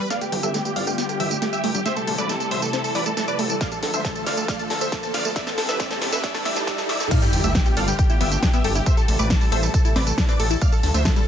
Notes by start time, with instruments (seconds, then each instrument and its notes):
0.10 analog synth pad D3 G3 B3 F4 G4, synth arpeggio sound A3, supersaw synth D5 F5, synth pluck F6, snare, closed hi-hat, tambourine, riser
0.21 synth arpeggio sound A3, supersaw synth G4, synth pluck G5, closed hi-hat, tambourine
0.32 analog synth bass G1, supersaw synth G4, synth arpeggio sound A4, synth pluck G5, open hi-hat
0.43 analog synth bass G1, supersaw synth G4 E5, synth arpeggio sound A4, synth pluck E6, closed hi-hat, tambourine
0.54 synth arpeggio sound A3, supersaw synth G4, synth pluck G5, snare, closed hi-hat, tambourine
0.65 synth arpeggio sound A3, supersaw synth G4, synth pluck G5, closed hi-hat, tambourine
0.76 analog synth bass G1, supersaw synth D5 F5, synth pluck F6, open hi-hat
0.87 synth arpeggio sound A3, supersaw synth G4, synth pluck G5, closed hi-hat, tambourine
0.98 synth arpeggio sound B3, supersaw synth G4, synth pluck G5, snare, closed hi-hat, tambourine
1.09 supersaw synth G4, synth arpeggio sound A4, synth pluck G5, closed hi-hat, tambourine
1.20 analog synth bass G1, synth arpeggio sound E3, supersaw synth G4 E5, synth pluck E6, open hi-hat
1.31 synth arpeggio sound A3, supersaw synth G4, synth pluck G5, closed hi-hat, tambourine
1.42 synth arpeggio sound A3, supersaw synth G4, synth pluck G5, snare, closed hi-hat, tambourine
1.53 supersaw synth G4 E5, synth pluck E6, closed hi-hat, tambourine
1.64 analog synth bass G1, synth arpeggio sound A3, supersaw synth G4, synth pluck G5, open hi-hat
1.74 synth arpeggio sound G3, supersaw synth G4, synth pluck G5, closed hi-hat, tambourine
1.85 analog synth pad C3 A3 E4, synth arpeggio sound A3, supersaw synth C5 E5, synth pluck E6, snare, closed hi-hat, tambourine
1.96 synth arpeggio sound A3, supersaw synth A4, synth pluck A5, closed hi-hat, tambourine
2.07 analog synth bass A1, supersaw synth A4, synth arpeggio sound A4, synth pluck A5, open hi-hat
2.18 analog synth bass A1, synth arpeggio sound A4, supersaw synth B4 D5, synth pluck D6, closed hi-hat, tambourine
2.29 synth arpeggio sound A3, supersaw synth A4, synth pluck A5, snare, closed hi-hat, tambourine
2.40 synth arpeggio sound A3, supersaw synth A4, synth pluck A5, closed hi-hat, tambourine
2.51 analog synth bass A1, supersaw synth C5 E5, synth pluck E6, open hi-hat
2.62 synth arpeggio sound A3, supersaw synth A4, synth pluck A5, closed hi-hat, tambourine
2.73 synth arpeggio sound C4, supersaw synth A4, synth pluck A5, snare, closed hi-hat, tambourine
2.84 supersaw synth A4, synth arpeggio sound A4, synth pluck A5, open hi-hat, tambourine
2.95 analog synth bass A1, synth arpeggio sound E3, supersaw synth B4 D5, synth pluck D6, open hi-hat
3.06 synth arpeggio sound A3, supersaw synth A4, synth pluck A5, closed hi-hat, tambourine
3.17 synth arpeggio sound A3, supersaw synth A4, synth pluck A5, snare, closed hi-hat, tambourine
3.28 supersaw synth B4 D5, synth pluck D6, closed hi-hat, tambourine
3.39 analog synth bass A1, synth arpeggio sound A3, supersaw synth A4, synth pluck A5, open hi-hat
3.50 synth arpeggio sound G3, supersaw synth A4, synth pluck A5, closed hi-hat, tambourine
3.61 analog synth pad D3 F3 F4 A4, synth arpeggio sound A3, supersaw synth D5 F5, synth pluck F6, kick, snare, closed hi-hat, tambourine
3.72 synth arpeggio sound A3, supersaw synth A4, synth pluck A5, closed hi-hat, tambourine
3.83 analog synth bass D2, supersaw synth A4, synth arpeggio sound A4, synth pluck A5, snare, open hi-hat
3.94 analog synth bass D2, synth arpeggio sound A4, supersaw synth C5 E5, synth pluck E6, closed hi-hat, tambourine
4.05 synth arpeggio sound A3, supersaw synth A4, synth pluck A5, kick, snare, closed hi-hat, tambourine
4.15 synth arpeggio sound A3, supersaw synth A4, synth pluck A5, closed hi-hat, tambourine
4.26 analog synth bass D2, supersaw synth D5 F5, synth pluck F6, snare, open hi-hat
4.37 synth arpeggio sound A3, supersaw synth A4, synth pluck A5, closed hi-hat, tambourine
4.48 synth arpeggio sound A3, supersaw synth D5 F5, synth pluck F6, kick, snare, closed hi-hat, tambourine
4.59 synth arpeggio sound A3, supersaw synth A4, synth pluck A5, closed hi-hat, tambourine
4.70 analog synth bass D2, synth arpeggio sound A4, supersaw synth A4, synth pluck A5, snare, open hi-hat
4.81 synth arpeggio sound A4, supersaw synth C5 E5, synth pluck E6, closed hi-hat, tambourine
4.92 synth arpeggio sound A3, supersaw synth A4, synth pluck A5, kick, snare, closed hi-hat, tambourine
5.03 synth arpeggio sound A3, supersaw synth A4, synth pluck A5, closed hi-hat, tambourine
5.14 analog synth bass D2, supersaw synth D5 F5, synth pluck F6, snare, open hi-hat
5.25 synth arpeggio sound A3, supersaw synth A4, synth pluck A5, tambourine
5.36 analog synth pad B2 E3 G3 E4 G4, synth arpeggio sound A3, supersaw synth D5 E5, synth pluck E6, kick, snare, closed hi-hat, tambourine
5.47 synth arpeggio sound A3, supersaw synth A4, synth pluck A5, snare, closed hi-hat, tambourine
5.58 analog synth bass E1, supersaw synth A4, synth arpeggio sound A4, synth pluck A5, snare, open hi-hat
5.69 analog synth bass E1, synth arpeggio sound A4, supersaw synth B4 E5, synth pluck E6, snare, closed hi-hat, tambourine
5.79 synth arpeggio sound A3, supersaw synth D5 E5, synth pluck E6, kick, snare, closed hi-hat, tambourine
5.91 synth arpeggio sound A3, supersaw synth A4, synth pluck A5, snare, closed hi-hat, tambourine
6.01 analog synth bass E1, supersaw synth A4, synth arpeggio sound A4, synth pluck A5, snare, open hi-hat
6.12 synth arpeggio sound A4, supersaw synth B4 E5, synth pluck E6, snare, closed hi-hat, tambourine
6.23 synth arpeggio sound A3, supersaw synth D5 E5, synth pluck E6, kick, snare, closed hi-hat, tambourine, swell
6.34 synth arpeggio sound A3, supersaw synth A4, synth pluck A5, snare, open hi-hat, tambourine
6.45 analog synth bass E1, synth arpeggio sound A3, supersaw synth D5 E5, synth pluck E6, snare, open hi-hat
6.56 synth arpeggio sound A3, supersaw synth A4, synth pluck A5, snare, closed hi-hat, tambourine
6.67 synth arpeggio sound A3, supersaw synth D5 E5, synth pluck E6, kick, snare, closed hi-hat, tambourine
6.78 synth arpeggio sound A3, supersaw synth A4, synth pluck A5, snare, closed hi-hat, tambourine
6.89 analog synth bass E1, synth arpeggio sound A3, supersaw synth D5 E5, synth pluck E6, snare, open hi-hat
7.00 synth arpeggio sound A3, supersaw synth A4, synth pluck A5, snare, closed hi-hat, tambourine
7.11 analog synth pad D3 G3 B3 F4 G4, synth arpeggio sound A3, supersaw synth D5 F5, synth pluck F6, kick, closed hi-hat, crash, tambourine, sub drop
7.22 supersaw synth G4, synth arpeggio sound A4, synth pluck G5, closed hi-hat, tambourine
7.33 analog synth bass G1, supersaw synth G4, synth pluck G5, open hi-hat, ride
7.44 analog synth bass G1, synth arpeggio sound A3, supersaw synth G4 E5, synth pluck E6, closed hi-hat, tambourine
7.55 supersaw synth G4, synth pluck G5, kick, snare, closed hi-hat, tambourine
7.66 synth arpeggio sound G3, supersaw synth G4, synth pluck G5, closed hi-hat, tambourine
7.77 analog synth bass G1, synth arpeggio sound A4, supersaw synth D5 F5, synth pluck F6, open hi-hat, ride
7.88 synth arpeggio sound G3, supersaw synth G4, synth pluck G5, closed hi-hat, tambourine
7.99 supersaw synth G4, synth pluck G5, kick, closed hi-hat, tambourine
8.10 synth arpeggio sound E4, supersaw synth G4, synth pluck G5, closed hi-hat, tambourine
8.21 analog synth bass G1, synth arpeggio sound B3, supersaw synth G4 E5, synth pluck E6, open hi-hat, ride
8.31 synth arpeggio sound A3, supersaw synth G4, synth pluck G5, closed hi-hat, tambourine
8.43 synth arpeggio sound D4, supersaw synth G4, synth pluck G5, kick, snare, closed hi-hat, tambourine
8.53 synth arpeggio sound B3, supersaw synth G4 E5, synth pluck E6, closed hi-hat, tambourine
8.64 analog synth bass G1, supersaw synth G4, synth arpeggio sound A4, synth pluck G5, open hi-hat, ride
8.75 synth arpeggio sound E4, supersaw synth G4, synth pluck G5, closed hi-hat, tambourine
8.86 analog synth pad C3 A3 E4, synth arpeggio sound A3, supersaw synth C5 E5, synth pluck E6, kick, closed hi-hat, tambourine
8.97 supersaw synth A4, synth arpeggio sound A4, synth pluck A5, closed hi-hat, tambourine
9.08 analog synth bass A1, supersaw synth A4, synth pluck A5, open hi-hat, ride
9.19 analog synth bass A1, synth arpeggio sound A3, supersaw synth B4 D5, synth pluck D6, closed hi-hat, tambourine
9.30 supersaw synth A4, synth pluck A5, kick, snare, closed hi-hat, tambourine
9.41 synth arpeggio sound G3, supersaw synth A4, synth pluck A5, open hi-hat, tambourine
9.52 analog synth bass A1, synth arpeggio sound A4, supersaw synth C5 E5, synth pluck E6, open hi-hat, ride
9.63 synth arpeggio sound G3, supersaw synth A4, synth pluck A5, closed hi-hat, tambourine
9.74 supersaw synth A4, synth pluck A5, kick, closed hi-hat, tambourine
9.85 synth arpeggio sound E4, supersaw synth A4, synth pluck A5, closed hi-hat, tambourine
9.96 analog synth bass A1, synth arpeggio sound C4, supersaw synth B4 D5, synth pluck D6, snare, open hi-hat, ride
10.07 synth arpeggio sound A3, supersaw synth A4, synth pluck A5, closed hi-hat, tambourine
10.18 synth arpeggio sound D4, supersaw synth A4, synth pluck A5, kick, snare, closed hi-hat, tambourine
10.29 synth arpeggio sound C4, supersaw synth B4 D5, synth pluck D6, closed hi-hat, tambourine
10.40 analog synth bass A1, synth arpeggio sound A4, supersaw synth A4, synth pluck A5, open hi-hat, ride
10.50 synth arpeggio sound E4, supersaw synth A4, synth pluck A5, closed hi-hat, tambourine
10.61 analog synth pad D3 F3 F4 A4, synth arpeggio sound A3, supersaw synth D5 F5, synth pluck F6, kick, closed hi-hat, tambourine
10.72 supersaw synth A4, synth arpeggio sound A4, synth pluck A5, closed hi-hat, tambourine
10.83 analog synth bass D2, supersaw synth A4, synth pluck A5, open hi-hat, ride
10.94 analog synth bass D2, synth arpeggio sound A3, supersaw synth C5 E5, synth pluck E6, closed hi-hat, tambourine
11.05 supersaw synth A4, synth pluck A5, kick, snare, closed hi-hat, tambourine
11.16 synth arpeggio sound G3, supersaw synth A4, synth pluck A5, closed hi-hat, tambourine